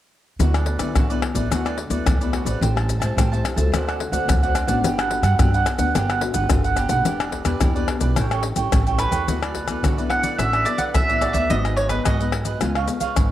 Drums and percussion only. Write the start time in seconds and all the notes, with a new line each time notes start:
0.40 pandeiro, maracas, surdo
0.54 pandeiro, tamborim, maracas
0.66 pandeiro
0.79 pandeiro, tamborim, maracas, surdo
0.95 pandeiro, tamborim, maracas, surdo
1.10 pandeiro, maracas
1.22 pandeiro, tamborim
1.35 pandeiro, maracas, surdo
1.52 pandeiro, tamborim, maracas, surdo
1.66 pandeiro, tamborim, maracas
1.78 pandeiro
1.90 pandeiro, maracas, surdo
2.06 pandeiro, tamborim, maracas, surdo
2.21 pandeiro, maracas
2.33 pandeiro, tamborim
2.46 pandeiro, maracas, surdo
2.63 pandeiro, maracas, surdo
2.77 pandeiro, tamborim, maracas
2.89 pandeiro, maracas, surdo
3.02 pandeiro, tamborim, maracas, surdo
3.18 pandeiro, tamborim, maracas, surdo
3.33 pandeiro, maracas
3.45 pandeiro, tamborim, maracas
3.58 pandeiro, maracas, surdo
3.74 pandeiro, tamborim, maracas, surdo
3.89 pandeiro, tamborim, maracas
4.00 pandeiro
4.13 pandeiro, maracas, surdo
4.29 pandeiro, tamborim, maracas, surdo
4.43 pandeiro, maracas
4.55 pandeiro, tamborim, maracas
4.68 pandeiro, maracas, surdo
4.84 pandeiro, maracas, surdo
4.99 pandeiro, tamborim, maracas
5.11 pandeiro
5.23 pandeiro, tamborim, maracas, surdo
5.39 pandeiro, tamborim, maracas, surdo
5.54 pandeiro, maracas
5.66 pandeiro, tamborim, maracas
5.79 pandeiro, maracas, surdo
5.95 pandeiro, tamborim, maracas, surdo
6.10 pandeiro, tamborim, maracas
6.21 pandeiro
6.34 pandeiro, maracas, surdo
6.50 pandeiro, tamborim, maracas, surdo
6.64 pandeiro, maracas
6.76 pandeiro, tamborim, maracas
6.89 pandeiro, maracas, surdo
7.05 pandeiro, maracas, surdo
7.20 pandeiro, tamborim, maracas
7.32 pandeiro, surdo
7.45 pandeiro, tamborim, maracas, surdo
7.61 pandeiro, tamborim, maracas, surdo
7.76 pandeiro, maracas
7.88 pandeiro, tamborim
8.01 pandeiro, maracas, surdo
8.16 pandeiro, tamborim, maracas, surdo
8.31 pandeiro, tamborim, maracas
8.43 pandeiro
8.56 pandeiro, maracas, surdo
8.72 pandeiro, tamborim, maracas, surdo
8.87 pandeiro, maracas
8.99 pandeiro, tamborim, maracas
9.12 pandeiro, maracas, surdo
9.28 pandeiro, maracas, surdo
9.43 pandeiro, tamborim, maracas
9.55 pandeiro, surdo
9.68 pandeiro, tamborim, maracas, surdo
9.84 pandeiro, tamborim, maracas, surdo
9.98 pandeiro, maracas
10.10 pandeiro, tamborim
10.23 pandeiro, maracas, surdo
10.39 pandeiro, tamborim, maracas, surdo
10.53 pandeiro, tamborim, maracas
10.66 pandeiro, maracas
10.78 pandeiro, maracas, surdo
10.94 pandeiro, tamborim, maracas, surdo
11.09 pandeiro, maracas
11.21 pandeiro, tamborim, maracas
11.34 pandeiro, maracas, surdo
11.50 pandeiro, maracas, surdo
11.65 pandeiro, tamborim, maracas
11.77 pandeiro
11.89 pandeiro, tamborim, maracas, surdo
12.05 pandeiro, tamborim, maracas, surdo
12.20 pandeiro, maracas
12.32 pandeiro, tamborim
12.45 pandeiro, maracas, surdo
12.61 pandeiro, tamborim, maracas, surdo
12.75 pandeiro, tamborim, maracas
12.88 pandeiro, maracas
13.00 pandeiro, maracas, surdo
13.16 pandeiro, tamborim, maracas, surdo